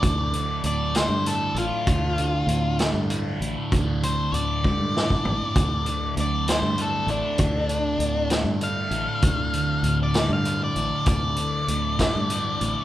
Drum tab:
HH |x-x-x-x-x-x-|x-x-x-x-x-x-|x-x-x-------|x-x-x-x-x-x-|
SD |------o-----|------o-----|--------o---|------o-----|
T1 |------------|------------|------o-----|------------|
FT |------------|------------|----------o-|------------|
BD |o-----------|o-----------|o-----o--o--|o-----------|

HH |x-x-x-x-x-x-|x-x-x-x-x-x-|x-x-x-x-x-x-|
SD |------o-----|------o-----|------o-----|
T1 |------------|------------|------------|
FT |------------|------------|------------|
BD |o-----------|o-----------|o-----o-----|